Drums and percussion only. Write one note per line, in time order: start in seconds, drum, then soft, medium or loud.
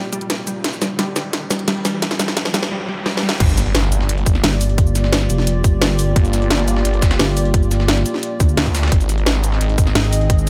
0.13 closed hi-hat medium
0.13 cabasa medium
0.21 closed hi-hat soft
0.30 snare medium
0.30 closed hi-hat loud
0.47 closed hi-hat medium
0.47 cabasa medium
0.64 snare medium
0.64 closed hi-hat medium
0.73 cabasa soft
0.82 snare medium
0.82 closed hi-hat medium
0.82 cabasa medium
0.99 snare medium
0.99 closed hi-hat medium
1.16 snare medium
1.16 closed hi-hat medium
1.16 cabasa medium
1.33 snare medium
1.33 closed hi-hat medium
1.51 snare medium
1.51 closed hi-hat medium
1.51 cabasa medium
1.59 closed hi-hat soft
1.68 snare medium
1.68 closed hi-hat medium
1.85 snare medium
1.85 open hi-hat medium
1.85 cabasa medium
2.02 snare medium
2.02 closed hi-hat medium
2.11 snare medium
2.11 closed hi-hat soft
2.11 cabasa soft
2.19 snare medium
2.19 closed hi-hat medium
2.19 cabasa medium
2.28 snare medium
2.37 snare loud
2.37 closed hi-hat medium
2.45 snare medium
2.45 closed hi-hat soft
2.54 snare loud
2.54 closed hi-hat medium
2.54 cabasa medium
2.63 snare medium
3.06 snare medium
3.17 snare medium
3.29 snare loud
3.40 kick loud
3.40 closed hi-hat medium
3.40 closed hi-hat loud
3.40 crash loud
3.49 closed hi-hat soft
3.49 cabasa soft
3.57 snare soft
3.57 closed hi-hat medium
3.57 cabasa medium
3.66 closed hi-hat soft
3.75 snare loud
3.75 closed hi-hat medium
3.75 closed hi-hat loud
3.83 snare medium
3.92 closed hi-hat medium
3.92 cabasa medium
4.00 snare medium
4.09 closed hi-hat medium
4.09 closed hi-hat loud
4.18 closed hi-hat soft
4.26 kick loud
4.26 closed hi-hat medium
4.26 cabasa medium
4.35 snare soft
4.44 snare loud
4.44 closed hi-hat medium
4.44 closed hi-hat loud
4.61 closed hi-hat medium
4.61 open hi-hat medium
4.61 cabasa medium
4.69 closed hi-hat soft
4.78 kick loud
4.78 closed hi-hat medium
4.87 cabasa soft
4.95 snare soft
4.95 closed hi-hat medium
4.95 cabasa medium
5.04 snare soft
5.13 snare loud
5.13 closed hi-hat medium
5.13 closed hi-hat loud
5.21 snare medium
5.30 closed hi-hat medium
5.30 cabasa medium
5.38 snare soft
5.47 closed hi-hat medium
5.64 kick loud
5.64 closed hi-hat medium
5.64 cabasa medium
5.82 snare loud
5.82 closed hi-hat medium
5.99 closed hi-hat medium
5.99 open hi-hat medium
5.99 cabasa medium
6.16 kick loud
6.16 closed hi-hat medium
6.25 closed hi-hat soft
6.25 cabasa soft
6.33 snare soft
6.33 closed hi-hat medium
6.33 cabasa medium
6.42 closed hi-hat soft
6.50 snare loud
6.50 closed hi-hat medium
6.59 snare medium
6.68 closed hi-hat medium
6.68 cabasa medium
6.76 snare medium
6.85 closed hi-hat medium
6.94 closed hi-hat soft
7.02 kick loud
7.02 snare loud
7.02 closed hi-hat medium
7.02 cabasa medium
7.11 snare loud
7.11 snare soft
7.11 closed hi-hat medium
7.19 snare loud
7.19 closed hi-hat medium
7.37 closed hi-hat medium
7.37 open hi-hat medium
7.37 cabasa medium
7.45 closed hi-hat soft
7.54 kick loud
7.54 closed hi-hat medium
7.63 cabasa soft
7.71 snare soft
7.71 closed hi-hat medium
7.71 cabasa medium
7.80 snare medium
7.80 snare soft
7.88 snare loud
7.88 closed hi-hat medium
7.97 snare soft
8.06 closed hi-hat medium
8.06 cabasa medium
8.14 snare soft
8.23 closed hi-hat medium
8.40 kick loud
8.40 closed hi-hat medium
8.40 cabasa medium
8.49 cabasa soft
8.57 snare loud
8.57 closed hi-hat medium
8.66 kick medium
8.75 snare loud
8.75 closed hi-hat medium
8.75 open hi-hat medium
8.75 cabasa medium
8.83 snare medium
8.83 closed hi-hat medium
8.88 snare medium
8.88 closed hi-hat medium
8.92 kick loud
8.92 closed hi-hat medium
9.00 closed hi-hat soft
9.00 cabasa soft
9.09 snare soft
9.09 closed hi-hat medium
9.09 cabasa medium
9.18 closed hi-hat soft
9.26 snare loud
9.26 closed hi-hat medium
9.35 snare soft
9.44 closed hi-hat medium
9.44 cabasa medium
9.52 snare medium
9.61 closed hi-hat medium
9.69 closed hi-hat soft
9.78 kick loud
9.78 closed hi-hat medium
9.78 cabasa medium
9.87 snare soft
9.95 snare loud
9.95 closed hi-hat medium
10.13 closed hi-hat medium
10.13 open hi-hat medium
10.13 cabasa medium
10.21 closed hi-hat soft
10.30 kick loud
10.30 closed hi-hat medium
10.38 cabasa soft